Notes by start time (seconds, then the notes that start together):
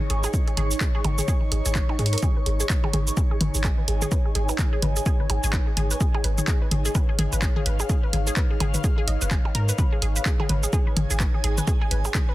Already playing: D#4 C#5 C#6
0.00 high tom
0.10 G#1 G#4, closed hi-hat
0.24 G#4, percussion blips, shaker
0.34 kick, shaker
0.48 G#4, closed hi-hat
0.57 G#1 G#4, closed hi-hat, high tom
0.71 shaker
0.81 G#4, kick, clap, shaker
0.95 G#4
1.04 G#1, closed hi-hat, mid tom, percussion blips
1.18 G#4, high tom, shaker
1.28 G#4, kick, shaker
1.52 G#1 G#4, closed hi-hat
1.66 G#1 G#4, closed hi-hat, shaker
1.75 kick, clap, high tom, shaker
1.89 D#4, percussion blips
1.99 G#2 G#4, closed hi-hat
2.06 closed hi-hat
2.13 A#4, closed hi-hat
2.18 closed hi-hat
2.23 G#4, kick, high tom, shaker
2.36 B4
2.46 G#1 G#4, closed hi-hat
2.60 G#4, shaker
2.70 B4, kick, clap, shaker
2.84 G#4, high tom, percussion blips
2.93 G#1 G#4, closed hi-hat, mid tom
3.07 B4, shaker
3.14 G#4 G#5, kick, shaker
3.31 G#4
3.41 G#1 B4, closed hi-hat, mid tom, high tom
3.55 G#1 G#4, shaker
3.64 G#4, kick, clap, percussion blips, shaker
3.78 B4
3.88 G#1 G#4, closed hi-hat
4.02 G#4, high tom, shaker
4.12 B4, kick, shaker
4.25 G#4
4.35 G#1 G#4, closed hi-hat
4.49 B4, percussion blips, shaker
4.59 G#4, kick, clap, high tom, shaker
4.73 G#4
4.82 G#1 B4, closed hi-hat, mid tom
4.96 G#4, shaker
5.06 G#4, kick, shaker
5.20 B4, high tom
5.30 G#1 G#4, closed hi-hat, percussion blips
5.44 G#1 G#4, shaker
5.53 B4, kick, clap, shaker
5.67 G#4
5.77 G#1 G#4, closed hi-hat, high tom
5.91 B4, shaker
6.01 G#4, kick, shaker
6.14 G#4, percussion blips
6.24 G#1 B4, closed hi-hat
6.38 G#4, high tom, shaker
6.48 G#4, kick, clap, shaker
6.62 B4
6.71 G#1 G#4, closed hi-hat, mid tom
6.85 G#4, shaker
6.92 B4 F5, kick, high tom, percussion blips, shaker
7.09 G#4
7.19 G#1 G#4, closed hi-hat, mid tom
7.33 G#1 B4, shaker
7.42 G#4, kick, clap, shaker
7.56 G#4, high tom
7.66 G#1 B4, closed hi-hat
7.80 G#4, percussion blips, shaker
7.89 G#4, kick, shaker
8.03 B4
8.13 G#1 G#4, closed hi-hat, high tom
8.27 G#4, shaker
8.37 B4, kick, clap, shaker
8.51 G#4
8.60 G#1 G#4, closed hi-hat, mid tom, percussion blips
8.74 B4, high tom, shaker
8.84 G#4, kick, shaker
8.98 G#4
9.08 G#1 D#5, closed hi-hat
9.21 F#1 B4, shaker
9.31 G#5, kick, clap, high tom, shaker
9.45 percussion blips
9.55 G#2 A#4, closed hi-hat
9.69 B4, shaker
9.78 B4, kick, high tom, shaker
9.92 G#4
10.02 G#1 G#4, closed hi-hat
10.16 B4, shaker
10.26 G#4, kick, clap, shaker
10.40 G#4, high tom, percussion blips
10.49 G#1 B4, closed hi-hat, mid tom
10.63 G#4, shaker
10.69 G#4 G#5, kick, shaker
10.87 B4
10.97 G#1 G#4, closed hi-hat, mid tom, high tom
11.10 G#1 G#4, shaker
11.20 B4, kick, clap, percussion blips, shaker
11.34 G#4
11.44 G#1 G#4, closed hi-hat
11.58 B4, high tom, shaker
11.67 G#4, kick, shaker
11.81 G#4
11.91 G#1 B4, closed hi-hat
12.05 G#4, percussion blips, shaker
12.15 G#4, kick, clap, high tom, shaker
12.29 B4